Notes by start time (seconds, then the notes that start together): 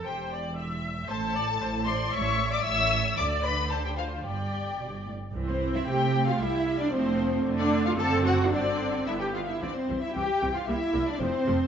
0.05 E1 E2 G4 C5 G5
0.31 D5
0.57 E5
1.08 A1 A2 A4 C5 A5
1.35 D5
1.61 A1 A2 C5
1.87 C5 D5 C6
2.13 A1 A2 C#5 E5 C#6
2.52 D5 D6
2.65 A1 A2 C#5 E5 E6
3.18 D2 D3 D5 D6
3.44 B4 B5
3.71 A4 C5 A5
3.84 G4 G5
3.97 F4 F5
4.24 G1 G2 G4 D5 G5
4.80 G1 B2
5.07 A2
5.34 C2 E3 C4
5.47 C4 C5
5.74 E4 E5
5.87 C3 A3 G4 G5
6.27 F4 F5
6.40 C2 G3 E4 E5
6.79 D4 D5
6.92 F1 F3 A3 C4 C5
7.46 F1 D3 A3
7.59 D4 D5
7.85 F4 F5
7.98 F#1 D3 C4 A4 A5
8.25 F#4 F#5
8.52 G1 D3 C4 D4 D5
9.06 G1 D3 B3 E4 E5
9.19 G4 G5
9.33 F4 F5
9.47 E4 E5
9.61 C2 E3 C4 D4 D5
9.74 C4 C5
9.89 C2 E3 C4
10.01 E4 E5
10.14 C2 E3 C4 G4 G5
10.42 C2 E3 C4
10.53 F4 F5
10.66 C2 G3 A#3 E4 E5
10.94 C2 G3 A#3
11.05 D4 D5
11.19 F1 F3 A3 C4 C5
11.47 F1 F3 A3